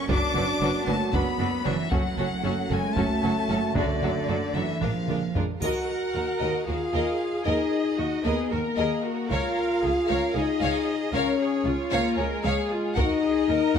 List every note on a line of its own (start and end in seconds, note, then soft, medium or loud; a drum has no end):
0.00 1.88 F#2 medium
0.00 1.88 F#4 medium
0.08 0.17 F#1 medium
0.08 1.88 F#3 medium
0.08 0.17 F#3 medium
0.08 1.87 B3 medium
0.08 0.17 D4 medium
0.08 0.86 D4 medium
0.08 0.17 F#4 medium
0.08 0.17 B4 medium
0.08 0.86 D6 medium
0.08 taiko medium
0.35 0.43 F#1 medium
0.35 0.44 F#3 soft
0.35 0.44 D4 soft
0.35 0.43 F#4 soft
0.35 0.43 B4 medium
0.61 0.69 F#1 medium
0.61 0.69 F#3 medium
0.61 0.69 D4 medium
0.61 0.70 F#4 soft
0.61 0.69 B4 medium
0.87 0.95 F#1 medium
0.87 0.96 F#3 medium
0.87 1.14 A3 medium
0.87 0.95 D4 soft
0.87 0.95 F#4 soft
0.87 0.95 B4 soft
0.87 1.13 A5 medium
1.13 1.21 F#1 medium
1.13 1.23 F#3 medium
1.13 1.66 B3 medium
1.13 1.22 D4 medium
1.13 1.21 F#4 medium
1.13 1.22 B4 soft
1.13 1.65 B5 medium
1.13 taiko medium
1.39 1.48 F#1 medium
1.39 1.48 F#3 soft
1.39 1.47 D4 soft
1.39 1.48 F#4 soft
1.39 1.48 B4 soft
1.65 1.74 F#1 medium
1.65 1.92 E3 medium
1.65 1.74 F#3 medium
1.65 1.74 D4 medium
1.65 1.73 F#4 soft
1.65 1.73 B4 soft
1.65 1.91 E5 medium
1.91 2.00 F#1 medium
1.91 4.78 F#2 medium
1.91 2.00 F#3 medium
1.91 2.69 F#3 medium
1.91 4.78 A3 medium
1.91 2.00 C#4 medium
1.91 3.72 C#4 medium
1.91 1.99 F#4 medium
1.91 4.65 F#4 medium
1.91 1.99 A4 medium
1.91 2.70 F#5 medium
1.91 taiko medium
2.18 2.26 F#1 medium
2.18 2.26 F#3 soft
2.18 2.27 C#4 soft
2.18 2.26 F#4 medium
2.18 2.26 A4 soft
2.43 2.52 F#1 medium
2.43 2.53 F#3 soft
2.43 2.53 C#4 medium
2.43 2.52 F#4 medium
2.43 2.51 A4 soft
2.70 2.78 F#1 medium
2.70 2.79 F#3 soft
2.70 2.97 G#3 medium
2.70 2.79 C#4 soft
2.70 2.78 F#4 soft
2.70 2.78 A4 soft
2.70 2.97 G#5 medium
2.96 3.05 F#1 medium
2.96 3.05 F#3 medium
2.96 3.76 A3 medium
2.96 3.05 C#4 soft
2.96 3.05 F#4 medium
2.96 3.05 A4 medium
2.96 3.76 A5 medium
2.96 taiko medium
3.23 3.31 F#1 medium
3.23 3.31 F#3 soft
3.23 3.31 C#4 soft
3.23 3.31 F#4 soft
3.23 3.31 A4 soft
3.49 3.58 F#1 medium
3.49 3.58 F#3 soft
3.49 3.58 C#4 soft
3.49 3.57 F#4 soft
3.49 3.57 A4 soft
3.75 3.84 F#1 medium
3.75 4.53 D3 medium
3.75 3.84 F#3 soft
3.75 5.31 D4 medium
3.75 3.84 D4 soft
3.75 3.84 F#4 medium
3.75 3.85 A4 medium
3.75 4.54 D5 medium
3.75 taiko medium
4.01 4.09 F#1 medium
4.01 4.11 F#3 soft
4.01 4.11 D4 soft
4.01 4.10 F#4 soft
4.01 4.10 A4 soft
4.28 4.37 F#1 medium
4.28 4.36 F#3 soft
4.28 4.37 D4 soft
4.28 4.36 F#4 soft
4.28 4.36 A4 soft
4.54 4.63 F#1 soft
4.54 4.82 E3 medium
4.54 4.64 F#3 soft
4.54 4.64 D4 soft
4.54 4.63 F#4 soft
4.54 4.63 A4 soft
4.54 4.82 E5 medium
4.82 4.90 A#1 soft
4.82 5.32 F2 soft
4.82 5.36 F3 soft
4.82 4.90 G#3 soft
4.82 5.32 A#3 soft
4.82 4.90 D4 soft
4.82 4.90 F4 soft
4.82 5.32 G#4 soft
4.82 4.90 A#4 soft
4.82 5.36 F5 medium
4.82 taiko low-mid medium
5.08 5.17 A#1 soft
5.08 5.17 G#3 soft
5.08 5.17 D4 soft
5.08 5.17 F4 soft
5.08 5.17 A#4 soft
5.08 taiko mid medium
5.35 5.43 A#1 soft
5.35 5.43 G#3 soft
5.35 5.44 D4 soft
5.35 5.43 F4 soft
5.35 5.43 A#4 soft
5.35 taiko low medium
5.60 5.70 D#2 soft
5.60 6.62 F#4 medium
5.60 5.87 F#4 soft
5.60 5.86 A#4 medium
5.60 5.87 D#5 soft
5.60 6.63 F#5 medium
5.60 taiko medium
5.60 triangle soft
5.89 6.67 A#4 soft
6.14 6.22 D#2 soft
6.14 6.23 D#2 soft
6.14 6.22 D#4 soft
6.14 6.22 F#4 soft
6.40 6.49 D#2 medium
6.40 6.49 D#2 soft
6.40 6.65 A#4 soft
6.40 6.65 D#5 soft
6.67 6.75 D#2 soft
6.67 6.76 D#2 soft
6.67 7.46 F4 medium
6.67 6.75 F#4 soft
6.67 7.96 G#4 soft
6.67 6.75 A#4 soft
6.67 7.46 F5 medium
6.93 7.02 D#2 medium
6.93 7.02 D#2 soft
6.93 7.18 A#4 medium
6.93 7.18 D#5 soft
7.44 7.54 D#2 medium
7.44 7.55 D#2 medium
7.44 8.23 D#4 medium
7.44 7.69 A#4 medium
7.44 7.70 D#5 soft
7.44 8.23 D#5 medium
7.98 8.06 D#2 soft
7.98 8.07 D#2 soft
7.98 8.06 D#4 soft
7.98 8.06 F#4 soft
7.98 8.25 F#4 soft
8.24 8.33 D#2 medium
8.24 8.51 B3 medium
8.24 8.51 G#4 soft
8.24 8.49 A#4 soft
8.24 8.51 B4 soft
8.24 8.49 D#5 medium
8.50 8.59 D#2 soft
8.50 8.61 D#2 soft
8.50 9.31 A#3 medium
8.50 8.59 F#4 soft
8.50 9.29 A#4 soft
8.50 8.59 A#4 soft
8.50 8.78 A#4 soft
8.77 8.85 D#2 medium
8.77 8.86 D#2 medium
8.77 9.04 G#4 soft
8.77 9.02 A#4 medium
8.77 9.02 D#5 medium
9.04 9.31 F#4 medium
9.30 9.39 C#2 medium
9.30 10.36 F4 medium
9.30 9.83 A#4 medium
9.30 9.56 C#5 medium
9.30 10.33 F5 medium
9.30 9.56 F5 medium
9.30 taiko medium
9.84 9.92 C#2 soft
9.84 9.92 F4 soft
9.84 9.92 G#4 soft
9.84 10.10 G#4 soft
10.08 10.17 C#2 medium
10.08 10.18 C#2 medium
10.08 10.35 A#4 medium
10.08 10.33 C#5 medium
10.08 10.33 F5 medium
10.08 taiko soft
10.35 10.43 C#2 soft
10.35 10.44 C#2 soft
10.35 11.14 D#4 medium
10.35 10.43 G#4 soft
10.35 11.14 G#4 medium
10.35 10.43 C#5 soft
10.35 11.14 D#5 medium
10.61 10.69 C#2 medium
10.61 10.86 C#5 medium
10.61 10.86 F5 medium
11.13 11.22 C#2 medium
11.13 11.74 C#4 medium
11.13 11.40 A#4 medium
11.13 11.92 C#5 medium
11.13 11.38 C#5 medium
11.13 11.38 F5 medium
11.40 11.65 G#4 soft
11.65 11.74 C#2 soft
11.65 11.74 C#2 medium
11.65 11.73 F4 soft
11.65 12.18 F4 medium
11.65 11.73 G#4 soft
11.90 12.00 C#2 medium
11.90 12.17 A#3 medium
11.90 12.18 A#4 medium
11.90 12.15 C#5 medium
11.90 12.15 F5 medium
12.16 12.25 C#2 medium
12.16 12.26 C#2 medium
12.16 12.97 G#3 medium
12.16 12.24 G#4 soft
12.16 12.97 G#4 medium
12.16 12.45 A#4 medium
12.16 12.25 C#5 soft
12.44 12.52 C#2 medium
12.44 12.72 G#4 medium
12.44 12.69 C#5 medium
12.44 12.69 F5 medium
12.72 12.98 F4 medium
12.96 13.05 D#2 medium
12.96 13.79 D#4 medium
12.96 13.24 F#4 medium
12.96 13.21 A#4 medium
12.96 13.79 D#5 medium
12.96 13.21 F#5 medium
12.96 taiko medium
13.24 13.50 G#4 medium
13.49 13.57 D#2 soft
13.49 13.58 D#4 soft
13.49 13.57 A#4 soft
13.49 13.76 A#4 medium
13.76 13.79 D#2 medium
13.76 13.79 A#4 medium
13.76 13.79 F#5 medium